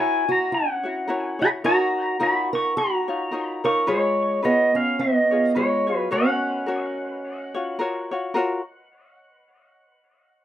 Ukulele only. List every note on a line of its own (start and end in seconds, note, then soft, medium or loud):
0.00 0.84 E4 medium
0.00 0.85 F#4 medium
0.00 0.83 A#4 medium
0.00 0.83 C#5 medium
0.83 1.07 E4 soft
0.83 1.08 F#4 medium
0.83 1.07 C#5 medium
1.08 1.40 E4 medium
1.08 1.39 F#4 medium
1.08 1.39 A#4 medium
1.08 1.38 C#5 medium
1.39 1.64 E4 soft
1.39 1.64 F#4 soft
1.39 1.63 C#5 medium
1.64 2.19 D#4 medium
1.64 2.18 A#4 medium
1.64 2.19 C#5 medium
2.20 3.08 D#4 medium
2.20 3.08 F4 medium
2.20 3.08 A#4 medium
2.20 3.07 C#5 medium
3.08 3.31 D#4 soft
3.08 3.32 F4 medium
3.08 3.32 C#5 medium
3.31 3.64 D#4 medium
3.31 3.64 F4 medium
3.31 3.64 A#4 medium
3.31 3.63 C#5 medium
3.64 3.87 D#4 soft
3.64 3.86 F4 soft
3.64 3.87 C#5 medium
3.87 4.43 F4 medium
3.87 4.43 G#4 medium
3.87 4.41 B4 medium
3.87 4.44 C#5 loud
4.42 5.33 F4 medium
4.42 5.31 G#4 medium
4.42 5.30 B4 medium
4.42 5.31 C#5 medium
5.31 5.54 F4 soft
5.31 5.55 G#4 soft
5.31 5.54 C#5 medium
5.55 5.88 F4 medium
5.55 5.87 G#4 medium
5.55 5.87 B4 medium
5.55 5.86 C#5 medium
5.87 6.11 F4 soft
5.87 6.10 G#4 soft
5.87 6.11 C#5 soft
6.11 6.67 F#4 medium
6.11 6.66 A#4 medium
6.11 6.68 C#5 medium
6.66 7.56 F#4 medium
6.66 7.55 A#4 medium
6.66 7.54 C#5 medium
7.54 7.78 F4 soft
7.54 7.79 F#4 medium
7.54 7.79 C#5 medium
7.79 8.11 F4 medium
7.79 8.11 F#4 medium
7.79 8.11 A#4 medium
7.79 8.10 C#5 medium
8.11 8.34 F4 soft
8.11 8.35 F#4 medium
8.11 8.35 C#5 medium
8.34 8.61 F4 medium
8.34 8.61 F#4 medium
8.34 8.60 A#4 medium
8.34 8.62 C#5 medium